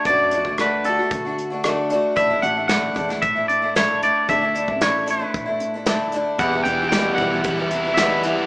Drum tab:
HH |x-x-x-x-x-x-x-x-|x-x-x-x-x-x-x-x-|x-x-x-x-x-x-x-x-|x-x-x-x-x-x-x-x-|
SD |----r-------r---|----o--o----o---|----o-------o---|----o-------o---|
BD |o--o----o-------|o-----o-o-------|o--o----o-------|o-----o-o-------|